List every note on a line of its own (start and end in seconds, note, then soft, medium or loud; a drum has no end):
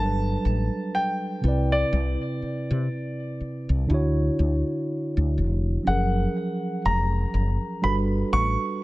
0.00 0.35 G1 medium
0.00 1.44 F#3 medium
0.00 1.43 G3 medium
0.00 1.44 D4 medium
0.00 1.45 A4 medium
0.00 0.98 A5 loud
0.06 1.45 B4 medium
0.45 0.68 A1 medium
0.95 1.75 G5 medium
1.41 1.83 C2 medium
1.41 3.84 C3 medium
1.41 3.85 C4 medium
1.41 3.86 E4 medium
1.46 3.87 B4 medium
1.46 3.88 D5 medium
1.72 3.65 D5 medium
1.93 2.15 C2 loud
2.42 muted fretless electric bass stroke soft
2.71 2.87 C3 loud
3.41 muted fretless electric bass stroke medium
3.69 3.85 C2 medium
3.87 4.29 D2 loud
3.87 5.81 D3 medium
3.87 5.82 D4 medium
3.87 5.83 E4 medium
3.92 5.84 F#4 medium
3.92 5.85 C#5 medium
4.39 4.62 D2 medium
5.17 5.39 D2 medium
5.38 5.76 F1 medium
5.83 6.26 F#1 loud
5.83 7.79 F3 medium
5.83 7.78 F#3 medium
5.83 7.78 C#4 medium
5.87 7.80 G#4 medium
5.87 7.81 A#4 medium
5.87 6.81 F#5 medium
6.85 7.24 F1 medium
6.85 7.87 A#5 medium
7.34 7.56 F#1 medium
7.82 8.22 G1 loud
7.82 8.84 G3 medium
7.82 8.84 D4 medium
7.82 8.84 F#4 medium
7.82 8.84 A4 medium
7.82 8.84 B4 medium
7.82 7.95 B5 medium
8.33 8.55 A1 loud
8.33 8.84 C#6 loud